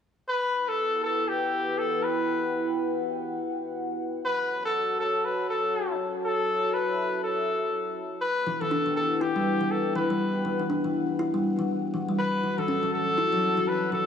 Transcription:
0.28 E4 B4 F#5 G5
0.69 A4
1.04 A4
1.29 G4
1.78 A4
2.03 B4
4.25 F#4 B4 C#5 A5
4.65 A4
5.00 A4
5.25 B4
5.50 A4
6.24 A4 E5
6.74 B4
7.23 A4
8.21 E4 B4 F#5 G5
8.47 E3
8.61 E3 A4
8.71 D4
8.86 E3
8.96 A4
9.21 E4 G4
9.36 G3
9.61 E3
9.71 A4
9.96 E3 B4
10.10 G3
10.45 E3
10.60 E3
10.70 D4
10.84 E3
11.19 E4
11.34 G3
11.59 E3
11.94 E3
12.09 G3
12.19 F#4 B4 C#5 A5
12.43 E3
12.58 E3 A4
12.68 C#4
12.83 E3
12.94 A4
13.18 E4
13.33 F#3
13.57 E3
13.68 B4
13.92 E3 A4

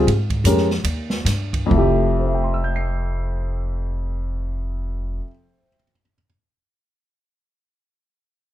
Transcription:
0.07 G#2, ride
0.30 kick, ride
0.44 F2 G#3 C#4 G4 A#4, hi-hat pedal, ride
0.57 snare
0.70 snare
0.84 D#2, ride
1.10 snare
1.25 G2, snare, hi-hat pedal, ride
1.53 kick, ride
1.66 F2 F3
1.71 F1 A3, kick
1.75 E4 G4
2.19 C5
2.26 E5
2.34 G5
2.44 C6
2.54 E6
2.64 G6
2.76 C7

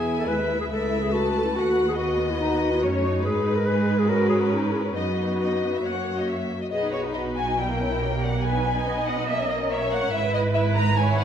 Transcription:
Already playing: E2 B3 E4 G#4 E5 G#5
0.18 A4
0.27 D#2 G#3 B4 E5
0.61 G#4
0.70 C#2 A3 E4 A4 E5
1.02 G#4
1.12 A3 F#4 A4 A5
1.45 E4
1.55 D#2 F#4 F#5
1.88 G#4
1.98 B3 F#4 D#5
2.30 E4
2.40 D#4 F#4 B4
2.72 E4
2.82 F#2 A3 C#4 F#4 C#5
3.05 D#4
3.24 G#2 G#3 D#4 G#4 B4
3.56 A#4
3.66 D#4 G#4 B4
3.99 G#4
4.08 C#4 F#4 A#4
4.29 G#4
4.51 D#4 G#4
4.72 E4
4.94 F#2 B3 D#4 F#4 B4 D#5
5.39 D#5
5.73 E5
5.83 F#2 A#3 F#4 C#5 F#5
6.17 D#5
6.27 E5
6.61 D#5
6.71 B1 B2 B3 G#4 B4 D#5
6.82 D#4
6.93 F#4 C#5
7.03 D#4
7.14 B3 F#4 D#5
7.25 D#4
7.36 F#4 G#5
7.47 D#4
7.57 G3 E4 A#4 G5
7.69 A#3
7.79 C#4
7.91 E4
8.02 C#4 G4
8.12 A#3
8.22 G3 F#5
8.34 A#3
8.44 B3 B4 G#5
8.54 D#4
8.65 B3
8.76 D#4
8.87 B3 D#5
8.97 D#4
9.07 B3 F#5
9.17 D#4
9.28 A#3 A#4 E5
9.39 C#4
9.49 A#3 D#5
9.59 C#4
9.70 A#3 C#5 E5
9.81 C#4
9.91 A#3 F#5
10.02 C#4
10.12 G#1 G#2 E4 B4 E5
10.34 D#5
10.55 E4 B4 E5
10.76 A#5
10.96 E4 B4 C#5 G#5
11.18 F#5

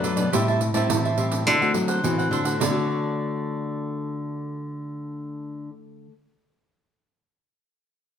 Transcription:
Already playing: F#2 F#3 A3 D4
0.03 D4 A4 B4 D5, pandeiro
0.16 B2 A4 B4 D5, pandeiro
0.33 A2 G3 C4 E4 G4 C5 E5 A5, pandeiro
0.48 C5 E5 A5, pandeiro
0.61 muted cavaquinho stroke, pandeiro
0.74 A2 G3 C4 E4 C5 E5 A5, pandeiro
0.90 A2 E3, pandeiro
1.04 C5 E5 A5, pandeiro
1.17 G3 C4 E4 G4 C5 E5 A5, pandeiro
1.32 pandeiro
1.46 D3 A3 C4 D4 F#4 A4 C5 F#5, pandeiro
1.61 A3 C4 F#4 A4 C5 F#5, pandeiro
1.74 F#3, muted cavaquinho stroke, pandeiro
1.88 A4 C5 F#5, pandeiro
2.04 A2 E3 A3 C4 F#4, pandeiro
2.18 A4 C5 F#5, pandeiro
2.31 D3 D4 A4 C5 F#5, pandeiro
2.45 A3 F#4 A4 C5 F#5, pandeiro
2.57 D3 F#4
2.61 A3 A4 C#5 D5, pandeiro
2.72 F#4

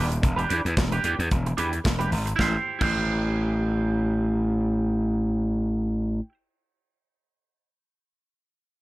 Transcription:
Already playing: D#1 D4
0.11 muted clean electric guitar stroke, closed hi-hat
0.22 E1, muted clean electric guitar stroke, kick, closed hi-hat
0.36 D4 G4 B4, closed hi-hat
0.49 E2 D4 G4 B4, closed hi-hat
0.65 E2, muted clean electric guitar stroke, closed hi-hat
0.77 E1, muted clean electric guitar stroke, kick, snare, clap
0.92 D4 G4 B4, closed hi-hat
1.04 E2 D4 G4 B4, closed hi-hat
1.19 E2, muted clean electric guitar stroke, closed hi-hat
1.31 E1, kick, closed hi-hat
1.46 muted clean electric guitar stroke, closed hi-hat
1.57 E2 D4 G4 B4, closed hi-hat
1.72 muted clean electric guitar stroke, closed hi-hat
1.84 E1, muted clean electric guitar stroke, kick, snare, clap
1.99 D4 G4 B4, closed hi-hat
2.12 G#1, muted clean electric guitar stroke, open hi-hat
2.26 muted clean electric guitar stroke, closed hi-hat
2.36 A1 E4 G4, kick, snare
2.41 C5
2.79 A1 E4 G4, kick, crash
2.84 C5

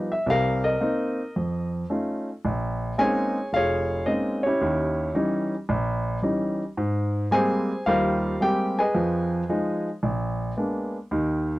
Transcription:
Already playing: F3 G3 B3 D#4
0.12 E5
0.26 C2 C3 F5
0.31 A#4
0.64 A#4 D#5
0.81 A#3 C4 D#4
1.36 F2
1.90 A3 C#4 D#4 F4
2.45 A#1
2.98 G#3 A#3 C4 C#4 D#4 G#4 C#5 G#5
3.52 F1 F4 G#4 C#5 F5
4.06 G#3 A#3 C4 C#4 D#4 D#5
4.43 C#4 E4 G4 C#5
4.61 D#2
5.15 E3 G3 C#4 D#4
5.69 A#1
6.22 E3 G3 C#4 D#4
6.77 G#2
7.31 G3 G#3 A#3 C4 G#4 C5 G#5
7.86 D#2 G3 F4 A#4 C5 F5
8.40 G3 G#3 A#3 C4 G4 G5
8.79 G#4 B4 D#5 G#5
8.94 F2 F3
9.49 F3 G#3 D#4
10.03 A#1
10.57 G#3 A#3 B3 D4
11.11 D#2 D#3

